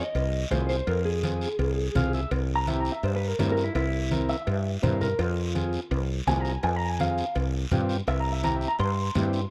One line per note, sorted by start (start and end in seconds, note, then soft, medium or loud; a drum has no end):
0.00 0.50 D#5 medium
0.15 0.44 C2 medium
0.15 cowbell medium
0.15 high conga soft
0.15 long guiro medium
0.51 0.80 C2 medium
0.51 0.76 C4 medium
0.51 0.76 F4 medium
0.51 0.77 G#4 medium
0.51 0.68 C5 medium
0.51 cowbell medium
0.51 high conga medium
0.51 low timbale medium
0.51 short guiro medium
0.69 0.87 C5 medium
0.69 short guiro medium
0.87 1.45 F2 loud
0.87 1.05 A#4 medium
0.87 cowbell medium
0.87 high conga soft
0.87 long guiro medium
1.05 2.10 G#4 loud
1.23 1.49 C4 medium
1.23 1.49 F4 medium
1.23 1.49 G#4 medium
1.23 cowbell medium
1.23 high conga medium
1.23 short guiro medium
1.41 short guiro medium
1.59 1.88 C2 medium
1.59 cowbell medium
1.59 high conga soft
1.59 long guiro medium
1.95 2.24 C2 medium
1.95 2.21 C4 medium
1.95 2.21 F4 medium
1.95 2.21 G#4 loud
1.95 2.12 F5 medium
1.95 cowbell medium
1.95 high conga medium
1.95 low conga medium
1.95 short guiro medium
2.13 2.31 E5 medium
2.13 short guiro medium
2.31 2.89 C2 loud
2.31 cowbell loud
2.31 high conga soft
2.31 long guiro medium
2.56 2.67 A#5 loud
2.67 2.93 C4 medium
2.67 2.93 E4 medium
2.67 2.93 G4 medium
2.67 2.79 E5 medium
2.67 cowbell medium
2.67 high conga medium
2.67 short guiro medium
2.80 2.92 A#5 medium
2.85 short guiro medium
2.92 3.03 E5 medium
3.03 3.32 G2 medium
3.03 3.15 C5 medium
3.03 cowbell medium
3.03 high conga soft
3.03 long guiro medium
3.16 3.28 B4 medium
3.28 3.39 A#4 medium
3.39 3.68 G2 medium
3.39 3.65 C4 medium
3.39 3.65 E4 medium
3.39 3.65 A#4 medium
3.39 3.51 C5 medium
3.39 cowbell medium
3.39 high conga medium
3.39 low timbale medium
3.39 short guiro medium
3.52 3.63 A#4 medium
3.57 short guiro medium
3.64 3.75 E4 medium
3.75 4.33 C2 medium
3.75 4.11 E4 loud
3.75 cowbell loud
3.75 high conga soft
3.75 long guiro medium
4.11 4.36 C4 medium
4.11 4.36 E4 medium
4.11 4.37 A#4 medium
4.11 cowbell medium
4.11 high conga medium
4.11 short guiro medium
4.29 4.82 E5 loud
4.29 short guiro medium
4.47 4.76 G2 loud
4.47 cowbell medium
4.47 high conga soft
4.47 long guiro medium
4.83 5.12 G2 medium
4.83 5.08 C4 medium
4.83 5.08 E4 medium
4.83 5.09 A#4 medium
4.83 5.01 C5 medium
4.83 cowbell medium
4.83 high conga medium
4.83 low conga medium
4.83 short guiro medium
5.01 5.19 A#4 loud
5.01 low conga medium
5.01 short guiro medium
5.19 5.77 F2 medium
5.19 5.54 F4 loud
5.19 cowbell loud
5.19 long guiro medium
5.55 5.80 C4 medium
5.55 5.81 F4 medium
5.55 5.81 G#4 medium
5.55 cowbell medium
5.55 high conga medium
5.55 short guiro medium
5.73 short guiro medium
5.91 6.20 C2 loud
5.91 cowbell medium
5.91 high conga soft
5.91 long guiro medium
6.27 6.56 C2 medium
6.27 6.53 C4 medium
6.27 6.53 F4 medium
6.27 6.53 G#4 medium
6.27 6.40 G#5 medium
6.27 cowbell medium
6.27 high conga medium
6.27 low timbale medium
6.27 short guiro medium
6.40 6.52 A#5 medium
6.45 short guiro medium
6.52 6.63 G#5 medium
6.63 7.21 F2 medium
6.63 6.76 G#5 medium
6.63 cowbell medium
6.63 high conga soft
6.63 long guiro medium
6.76 6.89 A#5 medium
6.89 7.00 G#5 loud
6.99 7.25 C4 medium
6.99 7.25 F4 medium
6.99 7.25 G#4 medium
6.99 7.35 F5 loud
6.99 cowbell medium
6.99 high conga medium
6.99 short guiro medium
7.18 short guiro medium
7.35 7.64 C2 medium
7.35 cowbell medium
7.35 high conga soft
7.35 long guiro medium
7.71 8.00 G2 loud
7.71 7.97 C4 loud
7.71 7.97 F4 medium
7.71 7.97 G4 loud
7.71 cowbell medium
7.71 high conga medium
7.71 low conga medium
7.71 short guiro medium
7.89 short guiro medium
8.07 8.65 C2 loud
8.07 8.19 E5 loud
8.07 cowbell loud
8.07 high conga soft
8.07 long guiro medium
8.20 8.32 A#5 medium
8.32 8.44 E5 medium
8.43 8.69 C4 medium
8.43 8.69 E4 medium
8.43 8.69 G4 medium
8.43 8.56 A#5 loud
8.43 cowbell medium
8.43 high conga medium
8.43 short guiro medium
8.56 8.68 E5 medium
8.61 short guiro medium
8.68 8.79 A#5 medium
8.79 9.08 G2 loud
8.79 9.50 C6 loud
8.79 cowbell medium
8.79 high conga soft
8.79 long guiro medium
9.15 9.44 G2 medium
9.15 9.41 C4 medium
9.15 9.41 E4 medium
9.15 9.41 G4 medium
9.15 cowbell medium
9.15 high conga medium
9.15 low timbale medium
9.15 short guiro medium
9.33 short guiro medium